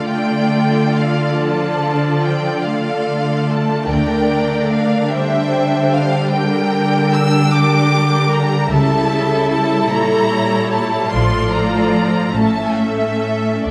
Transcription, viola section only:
0, 0, Header, 1, 2, 480
1, 0, Start_track
1, 0, Key_signature, -1, "minor"
1, 0, Tempo, 840336
1, 1758, Tempo, 819672
1, 2235, Time_signature, 12, 3, 24, 8
1, 3198, Tempo, 795756
1, 5598, Tempo, 811908
1, 7038, Tempo, 829876
1, 7518, Tempo, 891530
1, 8017, End_track
2, 0, Start_track
2, 0, Title_t, "Viola section"
2, 0, Program_c, 0, 48
2, 0, Note_on_c, 0, 57, 37
2, 0, Note_on_c, 0, 65, 39
2, 779, Note_off_c, 0, 57, 0
2, 804, Note_on_c, 0, 53, 40
2, 1522, Note_on_c, 0, 57, 40
2, 1523, Note_off_c, 0, 53, 0
2, 2213, Note_off_c, 0, 65, 0
2, 2238, Note_on_c, 0, 62, 42
2, 2961, Note_off_c, 0, 57, 0
2, 2973, Note_on_c, 0, 55, 46
2, 3660, Note_off_c, 0, 62, 0
2, 3696, Note_on_c, 0, 62, 49
2, 5101, Note_off_c, 0, 62, 0
2, 5127, Note_on_c, 0, 64, 55
2, 5818, Note_off_c, 0, 55, 0
2, 5840, Note_on_c, 0, 55, 49
2, 6537, Note_off_c, 0, 64, 0
2, 6544, Note_off_c, 0, 55, 0
2, 6566, Note_on_c, 0, 53, 45
2, 6568, Note_on_c, 0, 65, 48
2, 7280, Note_off_c, 0, 53, 0
2, 7281, Note_off_c, 0, 65, 0
2, 7282, Note_on_c, 0, 57, 43
2, 7284, Note_on_c, 0, 61, 42
2, 7987, Note_off_c, 0, 61, 0
2, 8001, Note_off_c, 0, 57, 0
2, 8017, End_track
0, 0, End_of_file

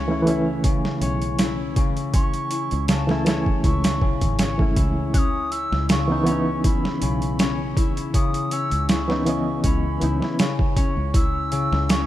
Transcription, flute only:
0, 0, Header, 1, 2, 480
1, 0, Start_track
1, 0, Key_signature, 4, "minor"
1, 0, Tempo, 750000
1, 1370, Time_signature, 4, 2, 24, 8
1, 7722, End_track
2, 0, Start_track
2, 0, Title_t, "Flute"
2, 0, Program_c, 0, 73
2, 1374, Note_on_c, 0, 85, 111
2, 1826, Note_off_c, 0, 85, 0
2, 1856, Note_on_c, 0, 81, 99
2, 2308, Note_off_c, 0, 81, 0
2, 2335, Note_on_c, 0, 85, 90
2, 2787, Note_off_c, 0, 85, 0
2, 3292, Note_on_c, 0, 90, 96
2, 3316, Note_on_c, 0, 87, 104
2, 3323, Note_off_c, 0, 90, 0
2, 3532, Note_on_c, 0, 88, 110
2, 3541, Note_off_c, 0, 87, 0
2, 3771, Note_off_c, 0, 88, 0
2, 3777, Note_on_c, 0, 85, 105
2, 4228, Note_off_c, 0, 85, 0
2, 4257, Note_on_c, 0, 83, 84
2, 4948, Note_off_c, 0, 83, 0
2, 5216, Note_on_c, 0, 87, 107
2, 5457, Note_on_c, 0, 88, 108
2, 5466, Note_off_c, 0, 87, 0
2, 5693, Note_off_c, 0, 88, 0
2, 5697, Note_on_c, 0, 85, 96
2, 6148, Note_off_c, 0, 85, 0
2, 6181, Note_on_c, 0, 83, 85
2, 6870, Note_off_c, 0, 83, 0
2, 7141, Note_on_c, 0, 88, 111
2, 7620, Note_on_c, 0, 85, 104
2, 7630, Note_off_c, 0, 88, 0
2, 7722, Note_off_c, 0, 85, 0
2, 7722, End_track
0, 0, End_of_file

